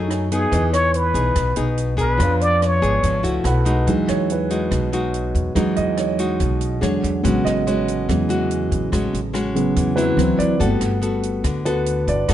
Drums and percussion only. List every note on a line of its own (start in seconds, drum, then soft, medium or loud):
0.11 cross-stick medium
0.11 closed hi-hat soft
0.32 closed hi-hat soft
0.52 kick medium
0.52 closed hi-hat medium
0.74 cross-stick medium
0.74 closed hi-hat soft
0.94 closed hi-hat soft
1.15 closed hi-hat soft
1.36 kick medium
1.36 cross-stick medium
1.36 closed hi-hat medium
1.56 closed hi-hat soft
1.78 closed hi-hat soft
1.98 kick soft
1.98 closed hi-hat soft
2.20 kick medium
2.20 cross-stick medium
2.20 closed hi-hat medium
2.41 closed hi-hat soft
2.62 cross-stick medium
2.62 closed hi-hat soft
2.83 closed hi-hat soft
3.03 kick medium
3.03 closed hi-hat medium
3.24 closed hi-hat soft
3.45 cross-stick medium
3.45 closed hi-hat soft
3.66 closed hi-hat soft
3.87 kick medium
3.87 closed hi-hat medium
4.08 cross-stick medium
4.08 closed hi-hat soft
4.30 closed hi-hat soft
4.50 closed hi-hat soft
4.71 kick medium
4.71 cross-stick medium
4.71 closed hi-hat medium
4.93 closed hi-hat soft
5.14 closed hi-hat soft
5.35 kick soft
5.35 closed hi-hat soft
5.56 kick medium
5.56 cross-stick medium
5.56 closed hi-hat soft
5.76 closed hi-hat soft
5.97 cross-stick soft
5.97 closed hi-hat soft
6.19 closed hi-hat soft
6.40 kick medium
6.40 closed hi-hat medium
6.61 closed hi-hat soft
6.83 cross-stick medium
6.83 closed hi-hat soft
7.04 closed hi-hat soft
7.25 kick medium
7.25 closed hi-hat medium
7.46 cross-stick medium
7.46 closed hi-hat soft
7.67 closed hi-hat soft
7.88 closed hi-hat soft
8.09 kick medium
8.09 cross-stick medium
8.09 closed hi-hat medium
8.30 closed hi-hat soft
8.51 closed hi-hat soft
8.72 kick soft
8.72 closed hi-hat soft
8.93 kick medium
8.93 cross-stick medium
8.93 closed hi-hat soft
9.14 closed hi-hat soft
9.35 cross-stick medium
9.35 closed hi-hat soft
9.56 closed hi-hat soft
9.76 kick medium
9.76 closed hi-hat medium
9.98 closed hi-hat soft
10.19 cross-stick medium
10.19 closed hi-hat soft
10.40 closed hi-hat soft
10.60 kick medium
10.60 closed hi-hat medium
10.81 cross-stick medium
10.81 closed hi-hat soft
11.02 closed hi-hat soft
11.23 closed hi-hat soft
11.44 kick medium
11.44 cross-stick medium
11.44 closed hi-hat medium
11.66 closed hi-hat soft
11.86 closed hi-hat soft
12.08 kick medium
12.08 closed hi-hat soft
12.29 kick medium
12.29 cross-stick medium
12.29 closed hi-hat medium